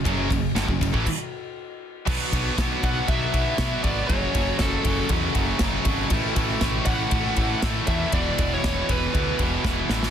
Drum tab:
CC |--------x-------|x---------------|----------------|----------------|
RD |x-x-x-x---------|--x-x-x-x-x-x-x-|x-x-x-x-x-x-x-x-|x-x-x-x-x-x-x-x-|
SD |----o-----------|----o-------o---|----o-------o---|----o-------o---|
BD |o-o--oooo-------|o-o-o-o-o-o-o-o-|o-o-o-o-o-o-o-o-|o-o-o-o-o-o-o-o-|

CC |----------------|
RD |x-x-x-x-x-x-----|
SD |----o-------o-oo|
BD |o-o-o-o-o-o-o---|